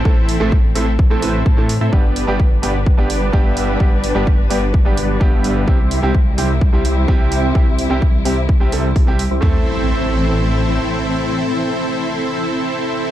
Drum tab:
HH |-o-o-o-o|-o-o-o-o|-o-o-o-o|-o-o-o-o|
FT |--------|--------|--------|--------|
BD |o-o-o-o-|o-o-o-o-|o-o-o-o-|o-o-o-o-|

HH |-o-o-ooo|--------|--------|
FT |--------|o-------|--------|
BD |o-o-o-o-|o-------|--------|